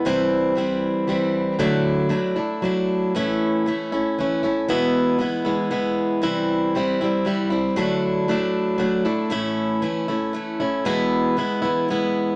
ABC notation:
X:1
M:3/4
L:1/8
Q:1/4=116
K:Emix
V:1 name="Steel-string acoustic guitar"
[=C,E,=G,=CE]2 [E,G,CE]2 [E,G,CE]2 | [D,F,A,DE]2 [F,A,DE] [A,DE] [F,A,DE]2 | [A,,E,A,CE]2 [E,A,CE] [A,CE] [E,A,CE] [A,CE] | [E,,B,,E,G,B,E]2 [E,G,B,E] [E,G,B,E] [E,G,B,E]2 |
[=C,E,=G,=CE]2 [E,G,CE] [G,CE] [E,G,CE] [G,CE] | [D,F,A,DE]2 [F,A,DE]2 [F,A,DE] [A,DE] | [A,,E,A,CE]2 [E,A,CE] [A,CE] [E,A,CE] [A,CE] | [E,,B,,E,G,B,E]2 [E,G,B,E] [E,G,B,E] [E,G,B,E]2 |]